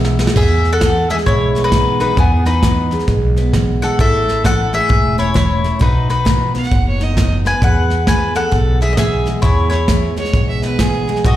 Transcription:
Already playing: B1 E3 G#3 B3 G#4 E5
0.05 snare
0.19 G#3, snare
0.27 snare
0.36 E2 G#4 E5, kick, crash
0.64 snare
0.73 A4 F#5
0.81 E3, kick, snare, hi-hat pedal
1.09 G#3 G#4 E5, snare
1.18 snare
1.26 B1 B2 E4 C#5, kick, snare
1.55 B3, snare
1.64 D#4 B4
1.72 E3, kick, snare, hi-hat pedal
2.00 G#3 D#4 B4, snare
2.17 E2 B3 G#4, kick, snare
2.45 D#4 B4, snare
2.63 E3, kick, snare, hi-hat pedal
2.91 G#3, snare
2.99 snare
3.08 B1 B2, kick, snare
3.36 B3, snare
3.53 E3, kick, snare, hi-hat pedal
3.82 G#3 A4 F#5, snare
3.99 A1 A2 E4 A4 E5, kick, snare
4.28 snare
4.44 E3 A4 F#5, kick, snare, hi-hat pedal
4.73 A3 G#4 E5, snare
4.89 E1 E2, kick, snare
5.18 C#4 E4 C#5, snare
5.34 E3 E4 C#5, kick, snare, hi-hat pedal
5.64 A3, snare
5.79 B1 B2 D#4 F#4 B4, kick, snare
6.09 D#4 B4, snare
6.25 D#3, kick, snare, hi-hat pedal
6.54 B3 F#5, snare
6.63 snare
6.71 F#1 F#2, kick, snare
6.88 C#5
7.00 D#4 D#5, snare
7.17 D#3, kick, snare, hi-hat pedal
7.45 B3 B4 G#5, snare
7.62 E2 G#4 B4 F#5, kick, snare
7.90 snare
8.07 E3 B4 G#5, kick, snare, hi-hat pedal
8.35 A4 F#5, snare
8.52 B1 B2, kick, snare
8.81 B3 G#4 E5, snare
8.93 D#5
8.97 E3 G#4 E5, kick, snare, hi-hat pedal
9.26 G#3, snare
9.42 E2 E4 G#4 C#5, kick, snare
9.70 E4 C#5, snare
9.88 E3, kick, snare, hi-hat pedal
10.16 G#3 C#5, snare
10.25 snare
10.33 B1 B2, kick, snare
10.49 E5
10.62 B3 B4, snare
10.79 E3 G#4, kick, snare, hi-hat pedal
11.07 G#3, snare
11.16 snare
11.25 B1 B2 F#4 D#5, kick, snare

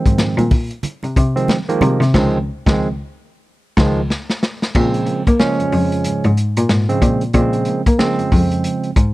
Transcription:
Already playing: D#3 F3 G#3 C4
0.06 G#2, kick, closed hi-hat
0.18 A#2, snare, muted conga
0.37 A#2, closed hi-hat, muted conga, high conga
0.51 kick, open hi-hat, low conga
0.71 closed hi-hat
0.83 closed hi-hat, muted conga, low conga
1.03 C3, closed hi-hat, muted conga
1.16 C3, kick, closed hi-hat
1.36 D#3 F3 G#3 C4, closed hi-hat
1.48 snare, high conga
1.68 D#3 F3 G#3 A#3, closed hi-hat
1.81 C3, closed hi-hat, high conga, low conga
2.00 C3, snare, closed hi-hat
2.14 C#2 D#3 F3 G#3 C4, kick, snare, crash
2.66 C#2 D#3 F3 G#3 C4, kick, snare
3.77 C#2 D#3 F3 G#3, kick, snare, crash
4.10 snare
4.30 snare
4.43 snare
4.62 snare
4.75 A#2 C#3 F3 G#3 C4, kick, crash
4.94 closed hi-hat
5.06 A#3, closed hi-hat
5.27 A#3, kick, closed hi-hat
5.39 C#3 F3 G#3 C#4, snare
5.59 F2, closed hi-hat
5.72 F2, open hi-hat
5.92 closed hi-hat
6.04 G#2, closed hi-hat
6.24 G#2, closed hi-hat
6.37 closed hi-hat
6.57 A#2, closed hi-hat
6.69 G#2, snare
6.89 C#3 F3 G#3 C4, closed hi-hat
7.02 A#2, kick, closed hi-hat
7.21 closed hi-hat
7.33 A#2 C#3 F3 G#3 C4, kick, closed hi-hat
7.53 closed hi-hat
7.65 A#3, closed hi-hat
7.86 A#3, kick, closed hi-hat
7.98 C#3 F3 G#3 C4, snare
8.18 F2, closed hi-hat
8.32 F2, kick, open hi-hat
8.52 closed hi-hat
8.64 closed hi-hat
8.84 closed hi-hat
8.96 G#2, kick, closed hi-hat

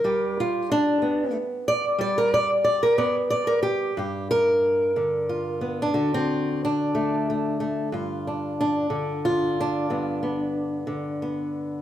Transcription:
Already playing: A#4
0.04 G3 G4
0.40 F4
0.72 D4
1.02 B3
1.68 D5
1.98 G3 D5
2.18 A#4
2.34 D5
2.64 D5
2.83 A#4
2.98 B3 D5
3.30 D5
3.47 A#4
3.63 G4
3.97 G2 G4
4.31 A#4
4.96 D3
5.29 F4
5.61 B3
5.82 D4
5.94 D3 F#4
6.14 C4
6.65 D4
6.95 A3
7.30 A3
7.60 A3
7.92 G2 F4
8.27 D4
8.61 D4
8.90 D3
9.25 F4
9.60 D4
9.90 G2 B3
10.23 B3
10.87 D3
11.22 B3

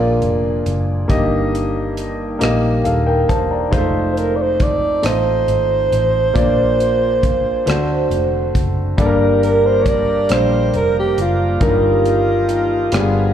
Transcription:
Already playing: A#1 A#2 F3 G#3 A#3 D4 F4 G#4 D5
0.22 F1, closed hi-hat
0.66 F#1, closed hi-hat
1.08 G1 G2 D#3 G3 A#3 D#4 G4 D#5, kick, closed hi-hat
1.55 closed hi-hat
1.97 closed hi-hat
2.39 A#1 A#3 D#4 G4 D#5, closed hi-hat
2.44 cross-stick
2.84 D#1 A4 F5, closed hi-hat
3.07 A#4 G5
3.29 E1 C5 A5, kick, closed hi-hat
3.51 D5 A#5
3.71 F1 F3 G#3 A3 C4 D#4 F4 C5, kick, closed hi-hat
3.78 A3
4.13 C5
4.17 A#4, closed hi-hat
4.36 D5
4.42 C5
4.60 D5, kick, closed hi-hat
5.02 A1 A3 D#4 F4 C5 D#5, cross-stick, closed hi-hat
5.48 G#1, closed hi-hat
5.92 A1, closed hi-hat
6.34 A#1 A#2 F3 A#3 D4 F4 D5, kick, closed hi-hat
6.80 closed hi-hat
7.23 kick, closed hi-hat
7.65 D2 D3 A3 C4 D4 F#4 C5, closed hi-hat
7.70 cross-stick
8.10 F1, closed hi-hat
8.55 F#1, kick, closed hi-hat
8.97 G1 G2 D3 G3 A#3 D4 G4 A4 A#4, kick, closed hi-hat
9.06 A#4
9.43 A#4, closed hi-hat
9.66 C5
9.83 C#5, kick, closed hi-hat
9.89 D5
10.29 A#1 G3 A#3 D4 C5, cross-stick, closed hi-hat
10.74 F1 A#4, closed hi-hat
10.99 G4
11.18 F#1 F4, closed hi-hat
11.60 G1 G2 D#3 F#3 A#3 D#4 A#4, kick, closed hi-hat
11.64 G3 F4
12.06 closed hi-hat
12.49 closed hi-hat
12.92 G1 G2 F3 G3 B3 F4 G4 G#4, cross-stick, closed hi-hat
13.00 G#4

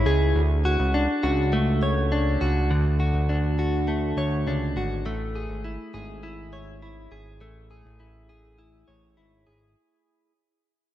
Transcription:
Already playing: A3 E4 C#5
0.06 C#2 G#4
0.35 D2
0.65 F#4
0.80 C#2
0.94 D4
1.23 C#2 F#4
1.53 A3
1.83 C#5
2.12 D4
2.41 C#2 F#4
2.70 D2 D3
3.00 F#4
3.14 D2
3.29 D2 D4
3.59 F#4
3.88 A3
4.17 D2 C#5
4.46 C#2 D4
4.76 G#1 F#4
5.05 A1 A3
5.36 G#4
5.49 G#1
5.64 E4
5.94 G#1 G#4
6.23 E4
6.53 C#5
6.82 E4
7.12 G#1 G#4
7.41 A1 A3
7.71 G#4
7.85 A1
8.00 A1 E4
8.29 G#4
8.59 E4
8.88 A1 C#5
9.17 G#1 E4
9.47 G#1 G#4

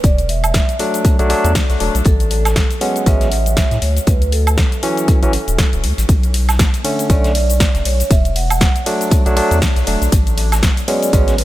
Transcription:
0.03 E1 D5, kick, closed hi-hat, shaker
0.18 closed hi-hat, shaker
0.29 E5, closed hi-hat, open hi-hat
0.44 closed hi-hat, high woodblock, shaker
0.54 kick, snare, closed hi-hat, shaker
0.69 closed hi-hat, shaker
0.79 F#3 A3 D4, closed hi-hat, open hi-hat
0.94 closed hi-hat, shaker
1.04 kick, closed hi-hat, shaker
1.19 B1 F#3 A3 D4, closed hi-hat, shaker
1.30 F#3 A3 D4, closed hi-hat, open hi-hat
1.44 E2, closed hi-hat, shaker
1.55 kick, snare, closed hi-hat, open hi-hat, shaker
1.70 B1, snare, closed hi-hat, shaker
1.80 E1 F#3 A3 D4, closed hi-hat, open hi-hat
1.95 B1, closed hi-hat, shaker
2.04 A1 A4, kick, closed hi-hat, shaker
2.20 closed hi-hat, shaker
2.31 closed hi-hat, open hi-hat
2.45 snare, closed hi-hat, high woodblock, shaker
2.56 kick, snare, closed hi-hat, shaker
2.71 closed hi-hat, shaker
2.81 F#3 G#3 B3 C#4 F#5, closed hi-hat, open hi-hat
2.96 closed hi-hat, shaker
3.06 A1 F#3 G#3 B3 C#4 E5, kick, closed hi-hat, shaker
3.21 snare, closed hi-hat, shaker
3.32 closed hi-hat, open hi-hat
3.46 closed hi-hat, shaker
3.57 kick, snare, closed hi-hat, shaker
3.71 A2, snare, closed hi-hat, shaker
3.82 D2 C#5, closed hi-hat, open hi-hat
3.97 closed hi-hat, shaker
4.07 D2 B4, kick, closed hi-hat, shaker
4.22 closed hi-hat, shaker
4.32 A4, closed hi-hat, open hi-hat
4.47 closed hi-hat, high woodblock, shaker
4.58 kick, snare, closed hi-hat, shaker
4.72 closed hi-hat, shaker
4.83 E3 F#3 C#4, closed hi-hat, open hi-hat
4.97 closed hi-hat, shaker
5.08 kick, closed hi-hat, shaker
5.23 A1 E3 F#3 C#4, closed hi-hat, shaker
5.33 closed hi-hat, open hi-hat
5.48 D1, closed hi-hat, shaker
5.58 kick, snare, closed hi-hat, shaker
5.73 D1, closed hi-hat, shaker
5.84 D2, closed hi-hat, open hi-hat
5.98 A1, closed hi-hat, shaker
6.09 B1, kick, closed hi-hat, ride, shaker
6.23 closed hi-hat, shaker
6.34 closed hi-hat, open hi-hat, ride
6.49 snare, closed hi-hat, high woodblock, shaker
6.59 kick, snare, closed hi-hat, ride, shaker
6.74 closed hi-hat, shaker
6.84 D3 A3 C#4 E5, closed hi-hat, open hi-hat, ride
6.99 closed hi-hat, shaker
7.10 B1 D3 A3 C#4 D5, kick, closed hi-hat, ride, shaker
7.24 snare, closed hi-hat, shaker
7.35 closed hi-hat, open hi-hat, ride
7.50 closed hi-hat, shaker
7.60 kick, snare, closed hi-hat, ride, shaker
7.75 F#1, snare, closed hi-hat, shaker
7.85 B1 C#5, closed hi-hat, open hi-hat, ride
8.00 closed hi-hat, shaker
8.11 E1 E5, kick, closed hi-hat, ride, shaker
8.25 closed hi-hat, shaker
8.36 F#5, closed hi-hat, open hi-hat, ride
8.50 closed hi-hat, high woodblock, shaker
8.61 kick, snare, closed hi-hat, ride, shaker
8.76 closed hi-hat, shaker
8.86 F#3 A3 D4, closed hi-hat, open hi-hat, ride
9.01 closed hi-hat, shaker
9.11 kick, closed hi-hat, ride, shaker
9.26 B1 F#3 A3 D4, closed hi-hat, shaker
9.37 F#3 A3 D4, closed hi-hat, open hi-hat, ride
9.51 E2, closed hi-hat, shaker
9.62 kick, snare, closed hi-hat, open hi-hat, ride, shaker
9.76 B1, snare, closed hi-hat, shaker
9.87 E1 F#3 A3 D4, closed hi-hat, open hi-hat, ride
10.02 B1, closed hi-hat, shaker
10.12 A1, kick, closed hi-hat, ride, shaker
10.27 closed hi-hat, shaker
10.37 closed hi-hat, open hi-hat, ride
10.52 snare, closed hi-hat, high woodblock, shaker
10.63 kick, snare, closed hi-hat, ride, shaker
10.77 closed hi-hat, shaker
10.88 F#3 G#3 B3 C#4 D5, closed hi-hat, open hi-hat, ride
11.03 closed hi-hat, shaker
11.13 A1 F#3 G#3 B3 C#4 C#5, kick, closed hi-hat, ride, shaker
11.27 snare, closed hi-hat, shaker
11.38 B4, closed hi-hat, open hi-hat, ride

